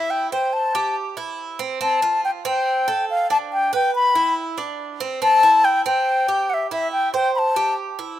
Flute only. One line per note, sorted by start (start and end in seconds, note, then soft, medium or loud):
0.00 0.12 E5 medium
0.10 0.31 G5 medium
0.32 0.55 G5 medium
0.53 0.96 A5 medium
1.82 2.21 A5 medium
2.25 2.31 G5 medium
2.46 3.06 G5 medium
3.10 3.29 F5 medium
3.31 3.37 A5 loud
3.53 3.72 G5 medium
3.75 3.94 G5 medium
3.95 4.34 B5 medium
5.23 5.66 A5 loud
5.65 5.85 G5 loud
5.86 6.51 G5 medium
6.50 6.55 F#5 medium
6.54 6.71 E5 medium
6.71 6.91 E5 medium
6.92 7.12 G5 medium
7.14 7.34 G5 loud
7.35 7.75 A5 medium
7.35 7.40 B5 medium